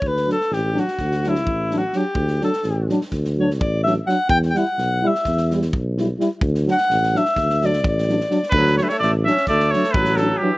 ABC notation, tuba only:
X:1
M:9/8
L:1/8
Q:3/8=85
K:D
V:1 name="Tuba" clef=bass
D,,2 A,,,2 D,,2 A,,,3 | D,,2 A,,,2 D,,2 A,,,3 | E,,2 B,,,2 E,,2 B,,,3 | D,,2 A,,,2 D,,2 A,,,3 |
D,,2 A,,,2 D,,2 A,,,3 |]